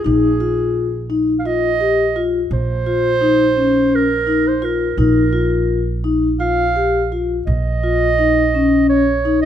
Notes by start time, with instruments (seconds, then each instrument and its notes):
0.04 upright bass A#1, vibraphone D#4, clarinet G#4
0.40 vibraphone F4
1.10 vibraphone D#4
1.39 clarinet F5
1.46 vibraphone F4, clarinet D#5
1.81 vibraphone G4
2.16 vibraphone F4
2.51 upright bass A#1, clarinet C5
2.86 vibraphone F4
3.21 vibraphone D#4
3.56 vibraphone C#4
3.95 clarinet A#4
4.27 vibraphone D#4
4.48 clarinet C5
4.62 vibraphone F4, clarinet A#4
4.97 upright bass A#1, vibraphone D#4, clarinet A#4
5.33 vibraphone F4
6.04 vibraphone D#4
6.40 vibraphone F4, clarinet F5
6.76 vibraphone G4
7.12 vibraphone F4
7.46 upright bass A#1, clarinet D#5
7.83 vibraphone F4
8.19 vibraphone D#4
8.55 vibraphone C#4
8.89 clarinet C#5
9.25 vibraphone D#4
9.42 clarinet D#5